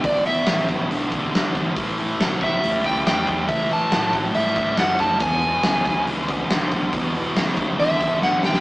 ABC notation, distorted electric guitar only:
X:1
M:4/4
L:1/8
Q:1/4=139
K:Emix
V:1 name="Distorted electric guitar" clef=bass
[E,,B,,] [E,,B,,] [E,,C,] [E,,C,] [E,,D,] [E,,D,] [E,,D,] [E,,D,] | [A,,E,] [A,,E,] [A,,F,] [A,,F,] [A,,=G,] [A,,G,] [A,,G,] [A,,G,] | [A,,E,] [A,,E,] [A,,F,] [A,,F,] [A,,=G,] [A,,G,] [A,,G,] [A,,G,] | [E,,B,,] [E,,B,,] [E,,C,] [E,,C,] [E,,D,] [E,,D,] [E,,D,] [E,,D,] |
[E,,B,,] [E,,B,,] [E,,C,] [E,,C,] [E,,D,] [E,,D,] [E,,D,] [E,,D,] |]